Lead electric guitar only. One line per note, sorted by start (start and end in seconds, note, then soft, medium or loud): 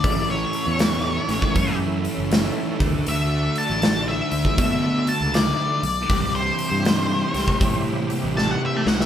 0.00 0.27 D5 medium
0.30 1.77 C#5 medium
3.09 3.56 E5 medium
3.58 4.06 A5 medium
4.08 4.57 E5 medium
4.59 5.08 E5 medium
5.09 5.33 A5 medium
5.35 6.32 D5 medium
6.35 7.82 C5 medium
8.37 8.51 A5 medium
8.51 8.61 F#5 medium
8.66 8.87 E5 medium
8.77 8.82 A5 medium
8.88 9.01 F#5 medium
9.01 9.06 E5 medium